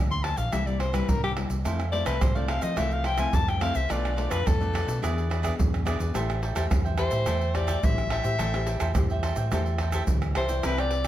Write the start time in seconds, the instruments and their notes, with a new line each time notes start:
Already playing: fingered electric bass D2, nylon-string guitar D3 F3 A#3 D4
0.11 soprano saxophone C6, pandeiro, shaker
0.24 soprano saxophone A5, pandeiro, tamborim
0.37 fingered electric bass A#1, soprano saxophone F5, pandeiro, shaker, surdo
0.52 fingered electric bass C2, nylon-string guitar C3 G3 A#3 E4, soprano saxophone E5, pandeiro, tamborim, shaker, surdo
0.66 nylon-string guitar G3 A#3 E4, soprano saxophone D5, pandeiro, shaker
0.80 soprano saxophone C5, pandeiro, tamborim, surdo
0.93 nylon-string guitar G3 A#3 E4, soprano saxophone B4, pandeiro, tamborim, shaker, surdo
1.09 fingered electric bass C2, nylon-string guitar G2, soprano saxophone A#4, pandeiro, shaker, surdo
1.24 soprano saxophone G4, pandeiro, tamborim, shaker
1.36 nylon-string guitar G3 A#3 E4, pandeiro, tamborim
1.50 fingered electric bass C2, pandeiro, shaker, surdo
1.65 fingered electric bass F2, nylon-string guitar F3 A3 C4 E4, cavaquinho E4 A4 C5 F5, pandeiro, tamborim, shaker, surdo
1.80 pandeiro, tamborim, shaker
1.92 nylon-string guitar A3 C4 E4, cavaquinho E4 A4 C5 F5, soprano saxophone D5, pandeiro
2.06 fingered electric bass C2, cavaquinho E4 A4 C5 F5, soprano saxophone B4, pandeiro, tamborim, shaker, surdo
2.21 fingered electric bass C2, nylon-string guitar C3, soprano saxophone C5, pandeiro, tamborim, shaker, surdo
2.35 nylon-string guitar A3 C4 E4, cavaquinho A4 C5 F5, soprano saxophone D5, pandeiro, shaker
2.48 cavaquinho E4 A4 C5 F5, soprano saxophone F5, pandeiro, tamborim
2.61 fingered electric bass F3, cavaquinho A4 C5 F5, soprano saxophone D#5, pandeiro, shaker, surdo
2.76 fingered electric bass C2, nylon-string guitar F3 A3 C4 E4, cavaquinho E4 A4 C5 F5, soprano saxophone E5, pandeiro, tamborim, shaker, surdo
2.91 soprano saxophone F5, pandeiro, shaker
3.04 cavaquinho E4 A4 C5 F5, soprano saxophone G5, pandeiro, tamborim
3.18 nylon-string guitar A3 C4 E4, cavaquinho E4 A4 C5 F5, soprano saxophone G#5, pandeiro, tamborim, shaker, surdo
3.33 fingered electric bass F2, nylon-string guitar C3, soprano saxophone A5, pandeiro, shaker, surdo
3.48 soprano saxophone G5, pandeiro, tamborim, shaker
3.60 nylon-string guitar A3 C4 E4, cavaquinho E4 A4 C5 F5, soprano saxophone F5, pandeiro, tamborim
3.74 fingered electric bass C2, cavaquinho A4 C5 F5, soprano saxophone E5, pandeiro, shaker, surdo
3.89 fingered electric bass B1, nylon-string guitar B2 A3 D4 F4, cavaquinho F4 A4 B4 D5, soprano saxophone D5, pandeiro, tamborim, shaker, surdo
4.05 pandeiro, tamborim, shaker
4.16 nylon-string guitar A3 D4 F4, cavaquinho F4 A4 B4 D5, pandeiro
4.31 fingered electric bass F2, cavaquinho F4 A4 B4 D5, soprano saxophone B4, pandeiro, tamborim, shaker, surdo
4.46 fingered electric bass F2, nylon-string guitar B2, soprano saxophone A4, pandeiro, tamborim, shaker, surdo
4.60 nylon-string guitar A3 D4 F4, cavaquinho A4 B4 D5, pandeiro, shaker
4.73 cavaquinho F4 A4 B4 D5, pandeiro, tamborim
4.87 fingered electric bass B2, cavaquinho A4 B4 D5, pandeiro, shaker, surdo
5.02 fingered electric bass E2, nylon-string guitar E3 B3 D4 G#4, cavaquinho E4 G#4 B4 D5, pandeiro, tamborim, shaker, surdo
5.18 pandeiro, shaker
5.29 cavaquinho E4 G#4 B4 D5, pandeiro, tamborim
5.43 nylon-string guitar B3 D4 G#4, cavaquinho E4 G#4 B4 D5, pandeiro, tamborim, shaker, surdo
5.58 fingered electric bass E2, nylon-string guitar B2, pandeiro, shaker, surdo
5.74 pandeiro, tamborim, shaker
5.85 nylon-string guitar B3 D4 G#4, cavaquinho E4 G#4 B4 D5, pandeiro, tamborim, shaker
5.99 fingered electric bass E2, cavaquinho G#4 B4 D5, pandeiro, shaker, surdo
6.14 fingered electric bass A1, nylon-string guitar A3 E4 G4 C5, cavaquinho A4 C5 E5 G5, pandeiro, tamborim, shaker, surdo
6.30 pandeiro, tamborim, shaker
6.42 cavaquinho A4 C5 E5 G5, pandeiro
6.55 fingered electric bass E2, nylon-string guitar E4 G4 C5, cavaquinho A4 C5 E5 G5, pandeiro, tamborim, shaker, surdo
6.70 fingered electric bass E2, nylon-string guitar E3, pandeiro, tamborim, shaker, surdo
6.85 cavaquinho C5 E5 G5, pandeiro, shaker
6.98 nylon-string guitar E4 G4 C5, cavaquinho A4 C5 E5 G5, soprano saxophone C5, pandeiro, tamborim, shaker
7.11 fingered electric bass A2, cavaquinho C5 E5 G5, pandeiro, shaker, surdo
7.26 fingered electric bass E2, nylon-string guitar A3, cavaquinho A4 C5 E5 G5, pandeiro, tamborim, shaker, surdo
7.41 pandeiro, shaker
7.54 nylon-string guitar E4 G4 C5, cavaquinho A4 C5 E5 G5, soprano saxophone D5, pandeiro, tamborim, surdo
7.67 cavaquinho A4 C5 E5 G5, pandeiro, tamborim, shaker, surdo
7.83 fingered electric bass A1, nylon-string guitar E3 E4 G4 C5, soprano saxophone E5, pandeiro, shaker, surdo
7.98 pandeiro, tamborim, shaker
8.10 cavaquinho A4 C5 E5 G5, soprano saxophone E5, pandeiro, tamborim
8.23 fingered electric bass A2, nylon-string guitar E4 G4 C5, cavaquinho C5 E5 G5, pandeiro, shaker, surdo
8.38 fingered electric bass A1, nylon-string guitar A3, cavaquinho A4 C5 E5 G5, pandeiro, tamborim, shaker, surdo
8.53 nylon-string guitar E4 G4 C5, pandeiro, tamborim, shaker
8.67 cavaquinho A4 C5 E5 G5, pandeiro, shaker
8.80 fingered electric bass E2, cavaquinho A4 C5 E5 G5, pandeiro, tamborim, shaker, surdo
8.95 fingered electric bass E2, nylon-string guitar E3 E4 G4 C5, pandeiro, tamborim, shaker, surdo
9.10 cavaquinho C5 E5 G5, pandeiro, shaker
9.23 cavaquinho A4 C5 E5 G5, pandeiro, tamborim
9.36 fingered electric bass A2, cavaquinho C5 E5 G5, pandeiro, shaker, surdo
9.52 fingered electric bass E2, nylon-string guitar A3 E4 G4 C5, cavaquinho A4 C5 E5 G5, pandeiro, tamborim, shaker, surdo
9.66 pandeiro, shaker
9.78 cavaquinho A4 C5 E5 G5, pandeiro, tamborim, surdo
9.92 nylon-string guitar E4 G4 C5, cavaquinho A4 C5 E5 G5, pandeiro, tamborim, shaker, surdo
10.07 fingered electric bass D2, nylon-string guitar E3, pandeiro, shaker, surdo
10.22 pandeiro, tamborim, shaker
10.35 fingered electric bass C2, nylon-string guitar E4 G4 C5, cavaquinho A4 C5 E5 G5, soprano saxophone C5, pandeiro, tamborim
10.49 nylon-string guitar E4 B4 D5, cavaquinho C5 E5 G5, pandeiro, shaker, surdo
10.63 fingered electric bass C2, nylon-string guitar C4, cavaquinho E4 B4 C5 G5, soprano saxophone B4, pandeiro, tamborim, low agogo, shaker, surdo
10.78 nylon-string guitar E4 B4 D5, cavaquinho B4 C5 G5, soprano saxophone D5, pandeiro, tamborim, shaker
10.91 muted cavaquinho stroke, pandeiro